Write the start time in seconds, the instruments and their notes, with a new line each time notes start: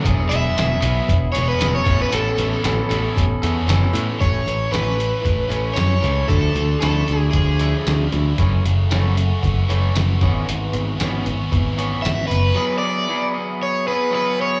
0.02 picked electric bass E1, clean electric guitar F#3 B3 E4, analog synth pad G#4 E5 F#5 B5, kick, closed hi-hat
0.06 clean electric guitar G#4
0.29 picked electric bass E1, distorted electric guitar E3 G#3 B3 E4, clean electric guitar B3 E4 G#4, overdriven electric guitar E5, closed hi-hat
0.55 picked electric bass E1, clean electric guitar F#3 B3 E4 G#4, snare, closed hi-hat, tambourine
0.81 picked electric bass B1, distorted electric guitar E3 G#3 B3 E4, clean electric guitar B3 E4 G#4, closed hi-hat
1.09 picked electric bass E1, kick, closed hi-hat
1.32 distorted electric guitar E3 G#3 B3 E4, clean electric guitar E4 G#4, overdriven electric guitar C#5, closed hi-hat
1.36 picked electric bass E1, clean electric guitar B3
1.48 overdriven electric guitar B4
1.59 picked electric bass E1, clean electric guitar F#3 B3 E4 G#4, snare, closed hi-hat, tambourine
1.75 overdriven electric guitar C#5
1.84 picked electric bass A1, distorted electric guitar E3 A3 C#4 E4, clean electric guitar E3 B3 C#4 A4, analog synth pad C#5, kick, closed hi-hat
1.90 analog synth pad A4
2.02 overdriven electric guitar B4
2.09 picked electric bass A1, clean electric guitar E3 B3 C#4 A4, closed hi-hat
2.14 overdriven electric guitar A4
2.36 picked electric bass A1, distorted electric guitar E3 A3 C#4 E4, clean electric guitar B3 C#4 A4, closed hi-hat
2.63 picked electric bass A1, clean electric guitar E3 B3 C#4 A4, snare, closed hi-hat, tambourine
2.89 picked electric bass A1, distorted electric guitar E3 A3 C#4 E4, clean electric guitar B3 C#4 A4, closed hi-hat
3.17 picked electric bass A1, kick, closed hi-hat
3.42 picked electric bass E2, distorted electric guitar E3 A3 C#4 E4, clean electric guitar B3 C#4 A4, closed hi-hat
3.67 picked electric bass F#1, clean electric guitar E3 B3 C#4 A4, snare, closed hi-hat, tambourine
3.93 picked electric bass A2, distorted electric guitar E3 A3 C#4 E4, closed hi-hat
4.19 picked electric bass A1, distorted electric guitar A2, clean electric guitar E3 A3 C#4, analog synth pad A3 C#5 E5 C#6, overdriven electric guitar C#5, kick, closed hi-hat
4.45 picked electric bass A1, clean electric guitar E3 A3, distorted electric guitar E3, closed hi-hat
4.71 picked electric bass A1, clean electric guitar E3 A3 C#4, distorted electric guitar C#4, overdriven electric guitar B4, snare, closed hi-hat, tambourine
4.97 clean electric guitar E3 A3, distorted electric guitar E4, closed hi-hat
5.21 picked electric bass A1, clean electric guitar E3 A3, kick
5.26 distorted electric guitar A3, closed hi-hat
5.48 picked electric bass A1, clean electric guitar E3 A3 C#4, distorted electric guitar C#4, closed hi-hat
5.74 picked electric bass F#2, clean electric guitar E3 A3, distorted electric guitar A3, overdriven electric guitar C#5, snare, closed hi-hat, tambourine
6.01 picked electric bass C#2, clean electric guitar E3 A3 C#4, distorted electric guitar E4, closed hi-hat
6.27 picked electric bass D2, distorted electric guitar D3, clean electric guitar F3 A3 E4, overdriven electric guitar A4, analog synth pad D5 D6, kick, closed hi-hat
6.54 picked electric bass D2, distorted electric guitar D3, clean electric guitar F3 A3, closed hi-hat
6.80 picked electric bass D2, clean electric guitar F3 A3 E4, distorted electric guitar A3, overdriven electric guitar A4, snare, closed hi-hat, tambourine
7.07 picked electric bass D2, clean electric guitar F3 A3, distorted electric guitar E4, closed hi-hat
7.16 overdriven electric guitar G#4
7.31 picked electric bass D2, clean electric guitar F3 A3, distorted electric guitar F3, overdriven electric guitar G#4, kick, closed hi-hat
7.59 clean electric guitar F3 A3 E4, distorted electric guitar A3, closed hi-hat
7.86 picked electric bass D2, clean electric guitar F3 A3, distorted electric guitar F3, snare, closed hi-hat, tambourine
8.11 picked electric bass D2, clean electric guitar F3 A3, distorted electric guitar E4, closed hi-hat
8.37 picked electric bass F#1, distorted electric guitar F#2, clean electric guitar E3 A3 C#4, analog synth pad A4 F#5 C#6, kick, closed hi-hat
8.64 picked electric bass F#1, distorted electric guitar C#3, clean electric guitar E3 A3, closed hi-hat
8.89 picked electric bass F#1, clean electric guitar E3 A3 C#4, distorted electric guitar A3, snare, closed hi-hat, tambourine
9.15 clean electric guitar E3 A3, distorted electric guitar C#4, closed hi-hat
9.41 picked electric bass F#1, distorted electric guitar E3, clean electric guitar E3 A3, kick, closed hi-hat
9.68 picked electric bass F#1, clean electric guitar E3 A3 C#4, distorted electric guitar A3, closed hi-hat
9.94 picked electric bass F#1, distorted electric guitar E3, clean electric guitar E3 A3, snare, closed hi-hat, tambourine
10.19 picked electric bass G#1, distorted electric guitar G#2, clean electric guitar E3 B3 C#4, analog synth pad B4 E5 G#5, kick, closed hi-hat
10.46 picked electric bass G#1, distorted electric guitar G#2, clean electric guitar E3 B3, closed hi-hat
10.72 picked electric bass G#1, distorted electric guitar C#3, clean electric guitar E3 B3, closed hi-hat
10.97 picked electric bass G#1, clean electric guitar E3 B3, distorted electric guitar B3, closed hi-hat, tambourine
11.01 clean electric guitar C#4, snare
11.25 picked electric bass G#1, clean electric guitar E3 B3, distorted electric guitar C#4, closed hi-hat
11.51 picked electric bass G#1, clean electric guitar E3 B3, distorted electric guitar E3, kick, closed hi-hat
11.77 clean electric guitar E3 B3 C#4, distorted electric guitar B3, closed hi-hat
12.02 picked electric bass G#1, clean electric guitar E3 B3, distorted electric guitar E3, overdriven electric guitar E5, closed hi-hat, tambourine
12.06 snare
12.27 picked electric bass F#1, clean electric guitar E3 B3, overdriven electric guitar B4, closed hi-hat
12.31 distorted electric guitar C#4
12.54 clean electric guitar F#3 B3 E4 G#4, analog synth pad G#4 E5 F#5 B5
12.78 clean electric guitar G#4, overdriven electric guitar D5
12.83 clean electric guitar B3 E4
13.07 clean electric guitar F#3 B3 E4 G#4
13.34 clean electric guitar B3 E4 G#4
13.63 overdriven electric guitar C#5
13.87 clean electric guitar B3 E4 G#4, overdriven electric guitar B4
14.10 clean electric guitar F#3 B3 E4 G#4
14.15 overdriven electric guitar B4
14.41 overdriven electric guitar C#5